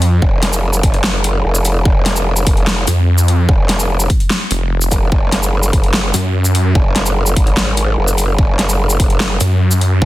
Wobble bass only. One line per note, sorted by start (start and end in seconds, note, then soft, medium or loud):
0.22 0.82 F1 loud
0.83 1.43 F#1 loud
1.45 1.84 F1 loud
1.85 2.45 F1 loud
3.49 4.08 F1 loud
4.92 5.10 F1 loud
5.12 5.72 F#1 loud
5.73 6.12 F#1 loud
6.75 7.35 F#1 loud
7.98 8.37 F#1 loud
8.38 8.98 F#1 loud
10.02 10.05 F#1 loud